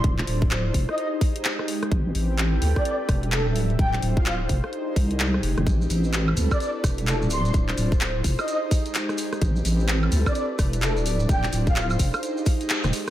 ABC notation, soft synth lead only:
X:1
M:4/4
L:1/16
Q:"Swing 16ths" 1/4=128
K:Am
V:1 name="Soft synth lead"
z6 z _e e z6 z | z6 z d d z3 A z3 | g z2 f f z8 z3 | z6 z d d z3 A z c' c' |
z6 z _e e z6 z | z6 z d d z3 A z3 | g z2 f f z8 z3 |]